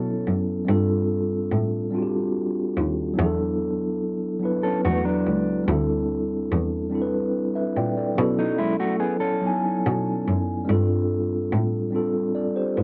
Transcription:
Already playing: B2 F#3 B3 C#4 E4 A4
0.27 F#2
0.65 G2 G3 C4 D4 F4
0.70 A4
1.51 A2
1.91 G3 C4 D4 F4
1.96 F#4
2.02 G4
2.77 D#2
3.14 F#3 B3 D4
3.18 E2 E4 G#4
3.26 A4
4.39 F#3 B3 D4
4.44 E4 B4
4.63 C#4 A4
4.85 E2 A3 F#4
5.05 F#3 D4
5.26 C#2
5.64 D2 G3 C4 D4
5.69 E4 A4
6.51 E2
6.90 G3 C4 D4
6.94 E4 A4
7.02 B4
7.55 B4 E5
7.76 A#2 D5 G5
7.97 A4 D5
8.15 B2 F#3 B3 C#4 E4
8.20 A4
8.39 F#3 D#4
8.58 G#3 E4
8.80 A3 F#4
9.00 B3 G#4
9.20 C#4 A4
9.41 F#3 B3 C#4
9.45 D#4 G#5
9.52 E4
9.86 B2
10.27 F#2
10.65 G2 G3 C4 D4 F4
10.71 A4
11.52 A2
11.90 G3 C4 D4
11.95 F4 A4
12.35 A4 D5
12.56 G4 C5
12.77 G#2 F4 B4

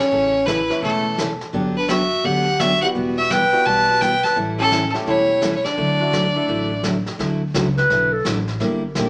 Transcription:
0.00 C#4 C#5
0.11 A1 C#3 E3 A3 C#4 A4, brush sweep
0.45 C#3 E3 A3 C#4 E4 A4 B4, snare, hi-hat pedal
0.70 E3 A3 C#4 E4, snare
0.82 E1 C#3 E3 A3 C#4 A4, brush sweep
1.18 C#3 E3 A3 C#4 A4, snare, hi-hat pedal
1.41 snare
1.53 G1 D3 F#3 B3 D4 G4, brush sweep
1.77 D4 B4
1.88 D3 F#3 B3 D4 F#4 G4 E5, snare, hi-hat pedal
2.23 D2 D3 F#3 B3 D4 G4 F#5, brush sweep
2.60 D3 F#3 B3 D4 F#4 G4 E5, snare, hi-hat pedal
2.82 G3 B3 E4 F#4 G4 F#5
2.95 E1 E3 G3 B3 F#4, brush sweep
3.18 F#4 E5
3.30 E3 G3 B3 F#4 B4 G5, snare, hi-hat pedal
3.53 G3 B3 E4 F#4
3.65 B1 E3 G3 B3 F#4 B4 A5, brush sweep
4.01 E3 G3 B3 F#4 B4 G5, snare, hi-hat pedal
4.23 B4 A5, snare
4.36 A1 E3 G3 C#4 E4 A4, brush sweep
4.59 A3 C#4 E4 G4 A4
4.71 E3 G3 C#4 E4 A4, snare, hi-hat pedal
4.94 A3 C#4 E4 G4, snare
5.06 E1 E3 G3 C#4 E4 A4 C#5, brush sweep
5.41 E3 G3 C#4 E4 A4, snare, hi-hat pedal
5.56 E4 C#5
5.64 D4 D5, snare
5.77 D2 D3 F#3 A3 E4 F#4, brush sweep
6.00 A3 D4 E4 F#4
6.12 D3 F#3 A3 E4 F#4, snare, hi-hat pedal
6.36 A3 D4 E4 A4
6.48 A1 D3 F#3 A3 E4 F#4, brush sweep
6.83 D3 F#3 A3 E4 F#4, snare, hi-hat pedal
7.06 snare
7.19 D2 D3 F#3 A3 E4 F#4, brush sweep, snare
7.54 C#2 D3 F#3 A3 E4 F#4, snare, hi-hat pedal
7.77 B4, snare
7.90 B1 D3 F#3 A3 E4 F#4, brush sweep, snare
8.13 A4
8.25 A1 D3 F#3 A3 E4 F#4, snare, hi-hat pedal
8.48 snare
8.60 G1 D3 G3 A#3 E4 G4, brush sweep, snare
8.95 A#1 D3 G3 A#3 E4 G4, snare, hi-hat pedal

